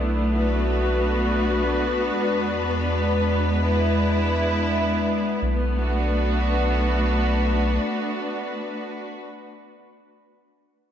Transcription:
0.00 2.11 B1 medium
0.00 2.15 A3 medium
0.00 5.41 B3 medium
0.00 5.41 D4 medium
0.00 0.25 E4 medium
0.34 3.44 F#4 medium
0.40 5.42 B4 medium
2.15 5.38 E2 medium
2.15 5.42 G#3 medium
3.61 5.42 E4 medium
5.41 7.79 B1 medium
5.41 8.81 A3 medium
5.53 8.93 B3 medium
5.65 9.06 D4 medium
5.77 9.18 F#4 medium
5.91 9.31 B4 soft

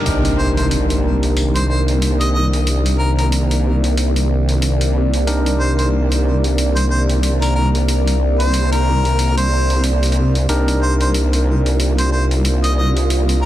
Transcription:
0.05 10.47 C2 medium
0.05 13.46 C3 medium
0.05 10.49 D#3 medium
0.05 13.46 A#3 medium
0.05 5.24 D4 medium
0.05 5.24 D#4 medium
0.05 5.24 G4 medium
0.05 5.24 A#4 medium
0.05 13.46 D5 medium
0.05 closed hi-hat medium
0.05 impact medium
0.25 closed hi-hat soft
0.38 0.50 C5 medium
0.57 0.66 C5 medium
0.57 closed hi-hat soft
0.71 closed hi-hat medium
0.90 closed hi-hat medium
1.23 closed hi-hat soft
1.37 closed hi-hat medium
1.56 1.64 C5 medium
1.56 closed hi-hat medium
1.69 1.81 C5 medium
1.88 closed hi-hat soft
2.02 closed hi-hat medium
2.20 2.29 D#5 medium
2.20 closed hi-hat medium
2.34 2.46 D#5 medium
2.54 closed hi-hat soft
2.67 closed hi-hat medium
2.86 closed hi-hat medium
2.99 3.11 A#4 medium
3.18 3.27 A#4 medium
3.18 closed hi-hat soft
3.32 closed hi-hat medium
3.51 closed hi-hat soft
3.84 closed hi-hat soft
3.97 closed hi-hat medium
4.16 closed hi-hat soft
4.49 closed hi-hat soft
4.62 closed hi-hat medium
4.81 closed hi-hat medium
5.14 closed hi-hat soft
5.27 10.46 D4 medium
5.27 10.46 D#4 medium
5.27 10.46 G4 medium
5.27 10.46 A#4 medium
5.27 closed hi-hat medium
5.46 closed hi-hat soft
5.60 5.72 C5 medium
5.78 5.87 C5 medium
5.78 closed hi-hat soft
6.12 closed hi-hat medium
6.44 closed hi-hat soft
6.58 closed hi-hat medium
6.76 6.85 C5 medium
6.76 closed hi-hat soft
6.91 7.03 C5 medium
7.09 closed hi-hat soft
7.23 closed hi-hat medium
7.42 7.51 A#4 medium
7.42 closed hi-hat medium
7.56 7.68 A#4 medium
7.75 closed hi-hat soft
7.88 closed hi-hat medium
8.07 closed hi-hat soft
8.39 8.67 C5 medium
8.39 closed hi-hat soft
8.54 closed hi-hat medium
8.72 9.34 A#4 medium
8.72 closed hi-hat soft
9.05 closed hi-hat soft
9.19 closed hi-hat medium
9.37 9.84 C5 medium
9.37 closed hi-hat soft
9.70 closed hi-hat soft
9.84 closed hi-hat medium
10.03 closed hi-hat soft
10.06 closed hi-hat soft
10.12 closed hi-hat soft
10.35 closed hi-hat soft
10.49 13.46 C2 medium
10.49 13.46 D4 medium
10.49 13.46 D#4 medium
10.49 13.46 F4 medium
10.49 13.46 G4 medium
10.49 13.46 A#4 medium
10.49 closed hi-hat medium
10.68 closed hi-hat soft
10.82 10.94 C5 medium
11.01 11.10 C5 medium
11.01 closed hi-hat soft
11.14 closed hi-hat medium
11.33 closed hi-hat soft
11.66 closed hi-hat soft
11.80 closed hi-hat medium
11.98 12.08 C5 medium
11.98 closed hi-hat soft
12.12 12.24 C5 medium
12.31 closed hi-hat soft
12.45 closed hi-hat medium
12.64 12.73 D#5 medium
12.64 closed hi-hat soft
12.78 12.90 D#5 medium
12.97 closed hi-hat soft
13.10 closed hi-hat medium
13.29 closed hi-hat soft
13.42 13.46 A#4 medium

